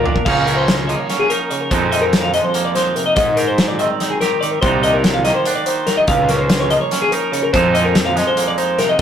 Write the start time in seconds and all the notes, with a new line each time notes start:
Already playing: A#2 D#3 A#3 A#4
0.04 D4 D5, floor tom
0.14 A#4, kick
0.25 C#2 C#3 F3 A#3 C#4 D#4 F5, kick, crash
0.46 C#4 A#4, closed hi-hat
0.56 C5
0.68 snare, closed hi-hat
0.77 C#5
0.87 F3 A#3 D#5, closed hi-hat
0.98 C#5
1.10 C#4, snare, closed hi-hat
1.20 G#4
1.30 D#4 A#4, closed hi-hat
1.50 C#3 C#5, closed hi-hat
1.61 A#4
1.71 F2 F3 G#3 A#3 D#4 C5, kick, closed hi-hat
1.92 A#3 D#5, closed hi-hat
2.02 A#4
2.13 snare, closed hi-hat
2.23 F5
2.34 F3 G#3 D#5, closed hi-hat
2.44 C5
2.54 A#3, closed hi-hat
2.65 D5
2.75 D#4 C5, snare, closed hi-hat
2.96 C3 A#4, closed hi-hat
3.06 D#5
3.16 G#2 D#5, kick, closed hi-hat
3.36 D#4 A#4, closed hi-hat
3.47 C5
3.58 snare, closed hi-hat
3.68 D5
3.79 D#3 C4 D#5, closed hi-hat
3.90 D5
4.00 D#4, snare, closed hi-hat
4.10 G#4
4.21 G4 A#4, snare, closed hi-hat
4.41 D#3 D5, closed hi-hat
4.51 A#4
4.61 C2 C3 D#3 A#3 D4 D#4 C5, kick, closed hi-hat
4.83 D4 D#5, closed hi-hat
4.93 A#4
5.04 snare, closed hi-hat
5.14 F5
5.24 D#3 A#3 D#5, snare, closed hi-hat
5.35 C5
5.45 D4, closed hi-hat
5.55 D5
5.66 D#4 C5, closed hi-hat
5.87 G2 A#4, snare, closed hi-hat
5.97 D#5
6.08 C#2 C#3 F5, kick, closed hi-hat
6.29 C#4 A#4, snare, closed hi-hat
6.39 C5
6.50 snare, closed hi-hat
6.60 C#5
6.70 F3 A#3 D#5, closed hi-hat
6.81 C#5
6.91 C#4, snare, closed hi-hat
7.02 G#4
7.12 D#4 A#4, closed hi-hat
7.32 C#3 C#5, closed hi-hat
7.43 A#4
7.53 F2 F3 G#3 A#3 D#4 C5, kick, closed hi-hat
7.74 A#3 D#5, closed hi-hat
7.84 A#4
7.95 snare, closed hi-hat
8.06 F5
8.15 F3 G#3 D#5, snare, closed hi-hat
8.27 C5
8.37 A#3, closed hi-hat
8.48 D5
8.58 D#4 C5, closed hi-hat
8.78 C3 A#4, snare, closed hi-hat
8.89 D#5